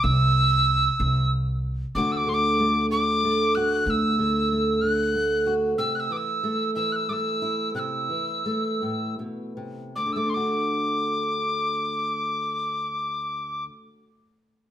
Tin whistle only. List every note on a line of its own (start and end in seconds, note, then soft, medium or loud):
0.03 1.31 E6 loud
1.95 2.13 D6 loud
2.12 2.18 E6 medium
2.17 2.30 D6 loud
2.29 2.35 C6 medium
2.34 2.86 D6 loud
2.91 3.57 D6 medium
3.55 3.87 F#6 medium
3.87 4.83 E6 medium
3.87 3.91 F#6 medium
4.81 5.54 F#6 medium
5.78 5.96 E6 medium
5.95 6.01 F#6 medium
6.00 6.13 E6 medium
6.12 6.18 D6 medium
6.17 6.71 E6 medium
6.75 6.93 E6 medium
6.92 7.10 E6 medium
6.92 6.97 F#6 medium
7.09 7.14 D6 medium
7.09 7.71 E6 medium
7.75 9.15 E6 medium
7.75 7.80 F#6 medium
9.96 10.14 D6 medium
10.13 10.18 E6 medium
10.17 10.31 D6 medium
10.30 10.35 C6 medium
10.34 13.64 D6 medium